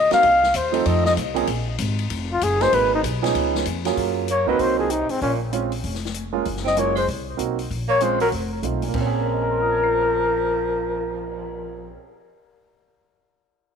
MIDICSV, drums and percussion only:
0, 0, Header, 1, 3, 480
1, 0, Start_track
1, 0, Key_signature, -5, "minor"
1, 0, Tempo, 311365
1, 353, Time_signature, 4, 2, 24, 8
1, 21205, End_track
2, 0, Start_track
2, 0, Title_t, "Cymbal swell"
2, 14087, Note_on_c, 9, 59, 39
2, 17521, Note_off_c, 9, 59, 0
2, 21205, End_track
3, 0, Start_track
3, 0, Title_t, "Drums"
3, 167, Note_on_c, 9, 51, 44
3, 175, Note_on_c, 9, 38, 42
3, 321, Note_off_c, 9, 51, 0
3, 329, Note_off_c, 9, 38, 0
3, 353, Note_on_c, 9, 51, 55
3, 361, Note_on_c, 9, 36, 25
3, 507, Note_off_c, 9, 51, 0
3, 515, Note_off_c, 9, 36, 0
3, 666, Note_on_c, 9, 38, 41
3, 821, Note_off_c, 9, 38, 0
3, 829, Note_on_c, 9, 44, 66
3, 829, Note_on_c, 9, 51, 61
3, 840, Note_on_c, 9, 36, 20
3, 983, Note_off_c, 9, 44, 0
3, 983, Note_off_c, 9, 51, 0
3, 994, Note_off_c, 9, 36, 0
3, 1135, Note_on_c, 9, 51, 52
3, 1289, Note_off_c, 9, 51, 0
3, 1319, Note_on_c, 9, 51, 59
3, 1323, Note_on_c, 9, 36, 24
3, 1473, Note_off_c, 9, 51, 0
3, 1477, Note_off_c, 9, 36, 0
3, 1626, Note_on_c, 9, 38, 50
3, 1780, Note_off_c, 9, 38, 0
3, 1803, Note_on_c, 9, 44, 55
3, 1803, Note_on_c, 9, 51, 60
3, 1805, Note_on_c, 9, 36, 23
3, 1957, Note_off_c, 9, 44, 0
3, 1957, Note_off_c, 9, 51, 0
3, 1959, Note_off_c, 9, 36, 0
3, 2100, Note_on_c, 9, 51, 48
3, 2254, Note_off_c, 9, 51, 0
3, 2271, Note_on_c, 9, 51, 60
3, 2280, Note_on_c, 9, 36, 19
3, 2425, Note_off_c, 9, 51, 0
3, 2434, Note_off_c, 9, 36, 0
3, 2750, Note_on_c, 9, 44, 54
3, 2750, Note_on_c, 9, 51, 70
3, 2760, Note_on_c, 9, 36, 25
3, 2904, Note_off_c, 9, 44, 0
3, 2904, Note_off_c, 9, 51, 0
3, 2914, Note_off_c, 9, 36, 0
3, 3062, Note_on_c, 9, 51, 49
3, 3217, Note_off_c, 9, 51, 0
3, 3237, Note_on_c, 9, 51, 63
3, 3244, Note_on_c, 9, 36, 26
3, 3391, Note_off_c, 9, 51, 0
3, 3398, Note_off_c, 9, 36, 0
3, 3721, Note_on_c, 9, 44, 61
3, 3721, Note_on_c, 9, 51, 63
3, 3722, Note_on_c, 9, 36, 18
3, 3875, Note_off_c, 9, 44, 0
3, 3875, Note_off_c, 9, 51, 0
3, 3877, Note_off_c, 9, 36, 0
3, 4020, Note_on_c, 9, 51, 47
3, 4028, Note_on_c, 9, 38, 37
3, 4174, Note_off_c, 9, 51, 0
3, 4182, Note_off_c, 9, 38, 0
3, 4203, Note_on_c, 9, 36, 22
3, 4203, Note_on_c, 9, 51, 65
3, 4357, Note_off_c, 9, 36, 0
3, 4357, Note_off_c, 9, 51, 0
3, 4683, Note_on_c, 9, 36, 19
3, 4685, Note_on_c, 9, 44, 58
3, 4685, Note_on_c, 9, 51, 68
3, 4837, Note_off_c, 9, 36, 0
3, 4839, Note_off_c, 9, 44, 0
3, 4839, Note_off_c, 9, 51, 0
3, 4993, Note_on_c, 9, 51, 48
3, 5000, Note_on_c, 9, 38, 51
3, 5147, Note_off_c, 9, 51, 0
3, 5154, Note_off_c, 9, 38, 0
3, 5163, Note_on_c, 9, 51, 57
3, 5165, Note_on_c, 9, 36, 19
3, 5317, Note_off_c, 9, 51, 0
3, 5319, Note_off_c, 9, 36, 0
3, 5474, Note_on_c, 9, 38, 57
3, 5628, Note_off_c, 9, 38, 0
3, 5634, Note_on_c, 9, 44, 58
3, 5634, Note_on_c, 9, 51, 60
3, 5643, Note_on_c, 9, 36, 21
3, 5788, Note_off_c, 9, 44, 0
3, 5788, Note_off_c, 9, 51, 0
3, 5797, Note_off_c, 9, 36, 0
3, 5936, Note_on_c, 9, 51, 49
3, 5944, Note_on_c, 9, 38, 38
3, 6090, Note_off_c, 9, 51, 0
3, 6098, Note_off_c, 9, 38, 0
3, 6122, Note_on_c, 9, 46, 43
3, 6123, Note_on_c, 9, 36, 29
3, 6276, Note_off_c, 9, 46, 0
3, 6277, Note_off_c, 9, 36, 0
3, 6596, Note_on_c, 9, 42, 53
3, 6750, Note_off_c, 9, 42, 0
3, 7078, Note_on_c, 9, 46, 44
3, 7080, Note_on_c, 9, 36, 31
3, 7232, Note_off_c, 9, 46, 0
3, 7235, Note_off_c, 9, 36, 0
3, 7550, Note_on_c, 9, 42, 51
3, 7704, Note_off_c, 9, 42, 0
3, 7848, Note_on_c, 9, 46, 39
3, 8002, Note_off_c, 9, 46, 0
3, 8037, Note_on_c, 9, 46, 40
3, 8040, Note_on_c, 9, 36, 29
3, 8191, Note_off_c, 9, 46, 0
3, 8194, Note_off_c, 9, 36, 0
3, 8518, Note_on_c, 9, 42, 50
3, 8672, Note_off_c, 9, 42, 0
3, 8813, Note_on_c, 9, 46, 42
3, 8967, Note_off_c, 9, 46, 0
3, 8996, Note_on_c, 9, 46, 43
3, 9000, Note_on_c, 9, 36, 32
3, 9150, Note_off_c, 9, 46, 0
3, 9154, Note_off_c, 9, 36, 0
3, 9167, Note_on_c, 9, 38, 29
3, 9321, Note_off_c, 9, 38, 0
3, 9331, Note_on_c, 9, 38, 44
3, 9468, Note_on_c, 9, 42, 47
3, 9485, Note_off_c, 9, 38, 0
3, 9622, Note_off_c, 9, 42, 0
3, 9947, Note_on_c, 9, 46, 41
3, 9958, Note_on_c, 9, 36, 31
3, 10101, Note_off_c, 9, 46, 0
3, 10112, Note_off_c, 9, 36, 0
3, 10122, Note_on_c, 9, 38, 28
3, 10276, Note_off_c, 9, 38, 0
3, 10276, Note_on_c, 9, 38, 38
3, 10430, Note_off_c, 9, 38, 0
3, 10430, Note_on_c, 9, 42, 49
3, 10584, Note_off_c, 9, 42, 0
3, 10738, Note_on_c, 9, 46, 41
3, 10892, Note_off_c, 9, 46, 0
3, 10919, Note_on_c, 9, 46, 42
3, 10920, Note_on_c, 9, 36, 34
3, 11073, Note_off_c, 9, 46, 0
3, 11074, Note_off_c, 9, 36, 0
3, 11389, Note_on_c, 9, 42, 45
3, 11543, Note_off_c, 9, 42, 0
3, 11695, Note_on_c, 9, 46, 39
3, 11849, Note_off_c, 9, 46, 0
3, 11880, Note_on_c, 9, 36, 31
3, 11884, Note_on_c, 9, 46, 40
3, 12034, Note_off_c, 9, 36, 0
3, 12038, Note_off_c, 9, 46, 0
3, 12340, Note_on_c, 9, 42, 49
3, 12495, Note_off_c, 9, 42, 0
3, 12642, Note_on_c, 9, 46, 39
3, 12796, Note_off_c, 9, 46, 0
3, 12825, Note_on_c, 9, 46, 42
3, 12833, Note_on_c, 9, 36, 31
3, 12979, Note_off_c, 9, 46, 0
3, 12987, Note_off_c, 9, 36, 0
3, 13303, Note_on_c, 9, 42, 51
3, 13457, Note_off_c, 9, 42, 0
3, 13597, Note_on_c, 9, 46, 37
3, 13751, Note_off_c, 9, 46, 0
3, 13778, Note_on_c, 9, 49, 52
3, 13785, Note_on_c, 9, 36, 49
3, 13932, Note_off_c, 9, 49, 0
3, 13939, Note_off_c, 9, 36, 0
3, 21205, End_track
0, 0, End_of_file